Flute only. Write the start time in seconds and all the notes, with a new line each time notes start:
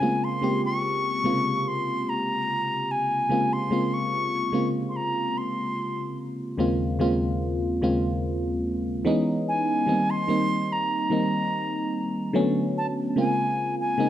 Already playing: G#5
0.24 C6
0.65 C#6
1.68 C6
2.09 A#5
2.91 G#5
3.53 C6
3.94 C#6
4.89 C6
4.96 A#5
5.38 C6
9.48 G#5
10.10 C6
10.72 A#5
12.78 A5
13.19 G#5
13.80 G#5